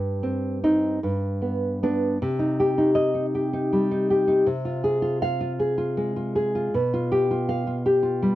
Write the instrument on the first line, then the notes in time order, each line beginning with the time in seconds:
nylon-string guitar
Already playing: G2
0.23 C4
0.64 C4 D#4
1.03 G2
1.42 B3
1.83 B3 D4
2.22 C3
2.39 D#4
2.60 G4
2.78 D#4
2.95 D#5
3.14 D#4
3.35 G4
3.53 D#4
3.73 G3
3.91 D#4
4.10 G4
4.28 D#4
4.46 C3
4.65 F4
4.84 G#4
5.02 F4
5.22 F5
5.41 F4
5.59 G#4
5.78 F4
5.97 G#3
6.16 F4
6.36 G#4
6.55 F4
6.74 B2
6.94 F4
7.12 G4
7.31 F4
7.49 F5
7.67 F4
7.86 G4
8.03 F4
8.22 G3